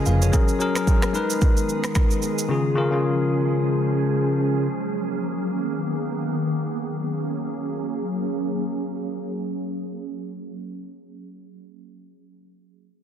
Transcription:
Already playing: C#3 F3 G#3 C#4 F4 G#4 A#4 D#5 G#5
0.06 F1 B4 F5, shaker
0.22 G#4 C#5, shaker
0.32 F#3 G#3 C#4 G#4 A#4, kick, shaker
0.48 shaker
0.59 F#3 C#4 G#4 A#4, shaker
0.75 F#3 C#4 G#4 A#4, finger snap, cross-stick, shaker
0.87 kick, shaker
1.02 finger snap, cross-stick, shaker
1.13 D#3 G#3 B3 D#4 A#4 B4, shaker
1.30 shaker
1.41 kick, shaker
1.57 shaker
1.69 shaker
1.84 finger snap, cross-stick, shaker
1.95 finger snap, kick, cross-stick, shaker
2.11 shaker
2.22 shaker
2.38 shaker
2.49 C#3 F3 G#3 C#4 F4 G#4
2.76 C#3 C#4 F4 A#4
2.91 C#3 C#4 F4 G#4
4.66 A#3
5.47 D#3 B3
6.82 F#3 A#3 C#4 G#4

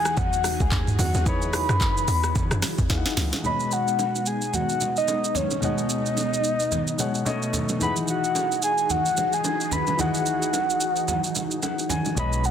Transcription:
Already playing: E2 E3 D#4 F#4 G#4 F#5 G#5
0.05 cross-stick, shaker
0.17 E2 F#5, kick, low conga, shaker
0.33 shaker
0.44 cross-stick, open hi-hat, low bongo, shaker
0.60 C#2 G#5, kick, shaker
0.71 D#2, kick, clap, mid tom, high bongo, shaker
0.87 mid tom, shaker
0.99 E2 F#5, open hi-hat, high bongo, low conga, shaker
1.14 D#2, high bongo, low bongo, shaker
1.24 E2 E3 D#4 G#4 B5, kick, low conga, shaker
1.28 C#5
1.42 shaker
1.53 cross-stick, open hi-hat, low bongo, shaker
1.69 F#2, cross-stick, shaker
1.81 kick, clap, high bongo, shaker
1.97 shaker
2.08 E2, open hi-hat, shaker
2.23 cross-stick, shaker
2.35 E2, kick, low conga, shaker
2.51 F#2, cross-stick, shaker
2.62 cross-stick, snare, open hi-hat, low bongo, shaker
2.78 E2, kick, shaker
2.89 D#2 E3 D#4 G#4 F5, kick, snare, high bongo, shaker
2.98 F#5
3.06 snare, shaker
3.17 C#2, snare, open hi-hat, high bongo, low conga, shaker
3.32 snare, high bongo, low bongo, shaker
3.42 B2 G#3 B3 D#4 C#5 B5, low conga, shaker
3.47 D#5
3.60 shaker
3.71 F#5, shaker
3.88 shaker
3.99 high bongo, shaker
4.15 shaker
4.26 G#5, shaker
4.41 shaker
4.53 F#5, low conga, shaker
4.69 shaker
4.81 low bongo, shaker
4.96 D#5, shaker
5.08 high bongo, shaker
5.24 shaker
5.35 C#5, high bongo, low conga, shaker
5.51 high bongo, low bongo, shaker
5.61 B2 G#3 C#5 D#5, low conga, shaker
5.65 F#5
5.78 shaker
5.90 shaker
6.06 shaker
6.17 high bongo, shaker
6.33 shaker
6.44 shaker
6.60 shaker
6.72 low conga, shaker
6.87 shaker
6.98 B2 G#3 C#5 F#5, low bongo, shaker
7.15 shaker
7.25 B2 A3 D#4 C#5 D#5, high bongo, shaker
7.42 shaker
7.53 high bongo, low conga, shaker
7.69 high bongo, low bongo, shaker
7.79 E3 D#4 F#4 G#4 B5, low conga, shaker
7.83 F#5
7.96 shaker
8.08 F#5, shaker
8.24 shaker
8.35 high bongo, shaker
8.52 shaker
8.62 G#5, shaker
8.78 shaker
8.90 F#5, low conga, shaker
9.06 shaker
9.17 low bongo, shaker
9.33 G#5, shaker
9.44 high bongo, shaker
9.61 shaker
9.71 B5, high bongo, low conga, shaker
9.87 high bongo, low bongo, shaker
9.97 E3 D#4 G#4 F#5, low conga, shaker
10.01 F#5
10.14 shaker
10.26 shaker
10.42 shaker
10.53 high bongo, shaker
10.70 shaker
10.80 shaker
10.96 shaker
11.08 low conga, shaker
11.24 shaker
11.35 low bongo, shaker
11.51 shaker
11.62 F#5, high bongo, shaker
11.79 shaker
11.89 G#5, high bongo, low conga, shaker
12.05 high bongo, low bongo, shaker
12.15 B1 B2 G#3 B3 C#5 B5, low conga, shaker
12.19 D#5
12.33 shaker
12.44 F#5, shaker

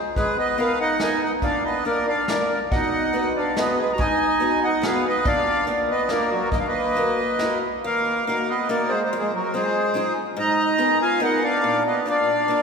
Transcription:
0.16 G#2 G#3 G#4 B4, kick, closed hi-hat
0.38 B3 B4 D#5
0.58 B3 D#4 G#4 A#4 B4 F5, closed hi-hat
0.80 D#4 D#5 F#5
1.00 B3 D#4 G#4 A#4 D#5 G#5, snare, closed hi-hat
1.23 D#4 D#5 F#5
1.42 A#2 D4 D5 F5, kick, closed hi-hat
1.64 B3 B4 D#5
1.85 A#3 D4 F4 A#4 D5, closed hi-hat
2.08 D4 D5 F5
2.28 A#3 D4 F4 A#4 D5, snare, closed hi-hat
2.71 B2 D#4 D#5 F#5, kick, closed hi-hat
3.13 B3 D#4 F#4 B4, closed hi-hat
3.36 D4 D5 F5
3.56 B3 D#4 F#4 B4 D#5, snare, closed hi-hat
3.77 G#4 B4
3.81 G#3
3.93 F#4 A#5
3.98 G#2 D#5 G#5, kick, closed hi-hat
4.02 D#4
4.40 B3 D#4 F#4 G#4, closed hi-hat
4.64 D#4 D#5 F#5
4.82 B3 D#4 F#4 G#4 B4 F5, snare, closed hi-hat
4.86 B3
5.07 B3 B4 D#5
5.25 A#2 D4 D5 F5, kick, closed hi-hat
5.67 A#3 D4 F4 A#4, closed hi-hat
5.90 B3 B4 D#5
6.09 A#3 D4 F4 A#4 D5, snare, closed hi-hat
6.29 F#3 F#4 A#4
6.51 D#3 A#3 A#4 D#5, kick, closed hi-hat
6.59 D4 F5
6.67 A#3 B4 D#5
6.95 A#3 D#4 F#4 A#4, closed hi-hat
7.39 A#3 D#4 F#4 A#4, snare, closed hi-hat
7.83 D#3 A#3 A#4 F5
8.26 A#3 D#4 F#4 A#4 F5
8.49 B3 B4 D#5
8.69 A#3 D#4 F#4 A#4 D5
8.89 G#3 G#4 C5
9.04 G#3 C5
9.13 F2
9.19 G#3 G#4 C5
9.34 F#3 F#4 A#4
9.54 G#3 C4 D#4 F4 G#4 C5
9.94 C4 D#4 F4 G#4
10.37 G#2 D#4 D#5 A#5
10.78 B3 D#4 G#4 A#4
11.02 F4 F5 G#5
11.20 B3 D#4 G#4 A#4 F#5
11.24 D#5
11.42 D4 D5 F5
11.64 A#2
11.86 B3 B4 D#5
12.06 A#3 D4 F4 A#4 D5 F5
12.48 A#3 D4 F4 A#4

